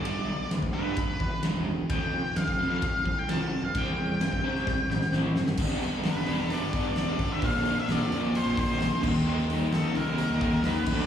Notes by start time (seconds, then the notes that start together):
Already playing: G1
0.05 G2 D3 G3 D5, ride bell
0.17 B1
0.29 G2 D3
0.51 D2 G2 D3, snare, ride bell
0.63 kick
0.74 G2 D3 G3 B4
0.97 G1 G2 D3, kick, ride bell
1.09 G1
1.20 E1 G2 D3, kick
1.43 E1 G2 D3 G3, snare, ride bell
1.67 G2 D3
1.90 F1 F2 C3 F3 G5, kick, ride bell
2.02 F2
2.13 F2 C3
2.36 F2 C3 F5, snare, ride bell
2.48 kick, snare
2.59 F1 F2 C3 F3
2.70 F5
2.82 F2 C3, kick, ride bell
2.94 C2
3.05 F2 C3, kick
3.19 G5
3.29 F2 C3 F3 A5, snare, ride bell
3.52 F2 C3
3.63 G2 F5
3.75 C2 C3 G3 C4 G5, kick, ride bell
3.87 E2
3.98 C3 G3
4.20 G2 C3 G3, snare, ride bell
4.33 kick, snare
4.44 C3 G3 C4
4.56 snare
4.67 C2 C3 G3, kick, snare
4.78 C2
4.89 A1 C3 G3, snare
5.01 snare
5.13 A1 C3 G3 C4, snare
5.36 G1 C3 G3, snare
5.47 snare
5.57 G1 G2 D3 G3 B3 D4, kick, crash
5.69 snare
5.81 G2 D3 G3 B3 D4, open hi-hat
6.04 G2 D3 G3 B3 D4 B4, snare, open hi-hat
6.27 E1 G2 D3 G3 B3 D4, open hi-hat
6.50 G2 D3 G3 B3 D4 D5, open hi-hat
6.62 G1
6.73 G2 D3 G3 B3 D4, kick, open hi-hat
6.88 D5
6.96 E1 G2 D3 G3 B3 D4 D5, snare, open hi-hat
7.19 G1 G2 D3 G3 B3 D4, kick, open hi-hat
7.33 E5
7.42 A#1 A#2 D3 F3 A#3 D4 F5, kick, open hi-hat
7.55 snare
7.65 A#2 D3 F3 A#3 D4, open hi-hat
7.80 E5
7.88 A#1 A#2 D3 F3 A#3 D4 D5, snare, open hi-hat
8.12 F2 A#2 D3 F3 A#3 D4, open hi-hat
8.35 A#2 D3 F3 A#3 D4 C5, open hi-hat
8.46 A#1
8.57 A#1 A#2 D3 F3 A#3 D4 C5, kick, open hi-hat
8.80 A#1 A#2 D3 F3 A#3 D4, snare, open hi-hat
9.03 D#2 D#3 G3 A#3 D#4, kick, crash
9.26 D#3 G3 A#3 D#4
9.38 snare
9.49 D#3 G3 A#3 D#4, open hi-hat
9.71 D#3 G3 A#3 D#4 A4, snare, open hi-hat
9.95 C2 D#3 G3 A#3 D#4 A#4, open hi-hat
10.18 D#3 G3 A#3 D#4, open hi-hat
10.30 D#2
10.41 D#3 G3 A#3 D#4, kick, open hi-hat
10.55 A#4
10.64 D#2 D#3 G3 A#3 D#4 B4, snare, open hi-hat
10.86 D2 D3 F#3 A3 D4, kick, crash
11.00 D5